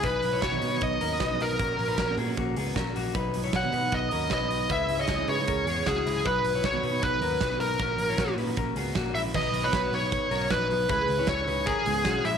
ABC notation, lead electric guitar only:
X:1
M:4/4
L:1/16
Q:1/4=155
K:B
V:1 name="Lead electric guitar"
B4 c4 d6 A2- | A6 z8 z2 | z4 f4 d4 d4 | e3 d3 c6 G4 |
B4 c4 B6 A2- | A6 z8 e2 | d3 B3 c6 B4 | B4 c4 G6 e2 |]